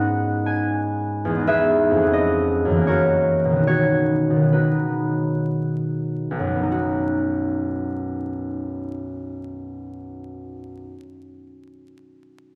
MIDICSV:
0, 0, Header, 1, 2, 480
1, 0, Start_track
1, 0, Key_signature, 5, "major"
1, 0, Tempo, 660793
1, 1063, Time_signature, 3, 2, 24, 8
1, 1550, Tempo, 765306
1, 2510, Tempo, 836820
1, 2990, Tempo, 903614
1, 3950, Tempo, 860832
1, 4910, Tempo, 836820
1, 6350, Tempo, 857143
1, 7475, End_track
2, 0, Start_track
2, 0, Title_t, "Harp"
2, 0, Program_c, 0, 46
2, 0, Note_on_c, 0, 44, 59
2, 0, Note_on_c, 0, 56, 45
2, 0, Note_on_c, 0, 59, 46
2, 0, Note_on_c, 0, 63, 46
2, 0, Note_on_c, 0, 71, 82
2, 0, Note_on_c, 0, 75, 82
2, 0, Note_on_c, 0, 78, 97
2, 336, Note_on_c, 0, 80, 72
2, 842, Note_off_c, 0, 78, 0
2, 907, Note_on_c, 0, 40, 51
2, 933, Note_off_c, 0, 56, 0
2, 942, Note_on_c, 0, 56, 44
2, 980, Note_off_c, 0, 59, 0
2, 988, Note_on_c, 0, 59, 43
2, 1001, Note_off_c, 0, 44, 0
2, 1015, Note_off_c, 0, 63, 0
2, 1023, Note_on_c, 0, 63, 44
2, 1063, Note_off_c, 0, 71, 0
2, 1069, Note_on_c, 0, 71, 67
2, 1072, Note_on_c, 0, 76, 85
2, 1077, Note_on_c, 0, 68, 70
2, 1385, Note_on_c, 0, 41, 52
2, 1416, Note_off_c, 0, 56, 0
2, 1425, Note_on_c, 0, 56, 42
2, 1460, Note_off_c, 0, 59, 0
2, 1469, Note_on_c, 0, 59, 46
2, 1492, Note_off_c, 0, 40, 0
2, 1505, Note_on_c, 0, 61, 42
2, 1540, Note_off_c, 0, 75, 0
2, 1549, Note_on_c, 0, 75, 88
2, 1550, Note_off_c, 0, 63, 0
2, 1570, Note_off_c, 0, 76, 0
2, 1874, Note_on_c, 0, 42, 49
2, 1907, Note_on_c, 0, 52, 42
2, 1942, Note_on_c, 0, 58, 41
2, 1964, Note_off_c, 0, 41, 0
2, 1969, Note_off_c, 0, 61, 0
2, 1976, Note_on_c, 0, 61, 41
2, 1981, Note_off_c, 0, 56, 0
2, 2000, Note_off_c, 0, 59, 0
2, 2011, Note_on_c, 0, 73, 74
2, 2019, Note_on_c, 0, 70, 55
2, 2023, Note_on_c, 0, 66, 59
2, 2033, Note_off_c, 0, 80, 0
2, 2039, Note_off_c, 0, 71, 0
2, 2041, Note_off_c, 0, 68, 0
2, 2358, Note_off_c, 0, 75, 0
2, 2374, Note_on_c, 0, 47, 48
2, 2409, Note_on_c, 0, 51, 40
2, 2445, Note_on_c, 0, 59, 37
2, 2458, Note_off_c, 0, 42, 0
2, 2475, Note_off_c, 0, 52, 0
2, 2480, Note_on_c, 0, 63, 37
2, 2493, Note_off_c, 0, 58, 0
2, 2507, Note_off_c, 0, 73, 0
2, 2510, Note_off_c, 0, 61, 0
2, 2512, Note_off_c, 0, 66, 0
2, 2515, Note_on_c, 0, 73, 82
2, 2519, Note_on_c, 0, 66, 61
2, 2529, Note_off_c, 0, 70, 0
2, 2868, Note_off_c, 0, 47, 0
2, 2875, Note_on_c, 0, 47, 46
2, 2903, Note_off_c, 0, 51, 0
2, 2910, Note_on_c, 0, 51, 39
2, 2932, Note_off_c, 0, 59, 0
2, 2939, Note_on_c, 0, 59, 36
2, 3001, Note_off_c, 0, 63, 0
2, 3002, Note_off_c, 0, 66, 0
2, 3003, Note_on_c, 0, 71, 52
2, 3006, Note_on_c, 0, 63, 40
2, 3010, Note_on_c, 0, 66, 42
2, 3915, Note_off_c, 0, 47, 0
2, 3931, Note_off_c, 0, 51, 0
2, 3950, Note_on_c, 0, 35, 47
2, 3971, Note_off_c, 0, 73, 0
2, 3993, Note_on_c, 0, 42, 40
2, 4042, Note_on_c, 0, 54, 42
2, 4078, Note_off_c, 0, 59, 0
2, 4084, Note_on_c, 0, 59, 42
2, 4119, Note_off_c, 0, 63, 0
2, 4126, Note_on_c, 0, 63, 41
2, 4169, Note_off_c, 0, 66, 0
2, 4176, Note_on_c, 0, 66, 40
2, 5137, Note_off_c, 0, 71, 0
2, 6512, Note_off_c, 0, 35, 0
2, 6556, Note_off_c, 0, 42, 0
2, 6604, Note_off_c, 0, 54, 0
2, 6647, Note_off_c, 0, 59, 0
2, 6689, Note_off_c, 0, 63, 0
2, 6739, Note_off_c, 0, 66, 0
2, 7475, End_track
0, 0, End_of_file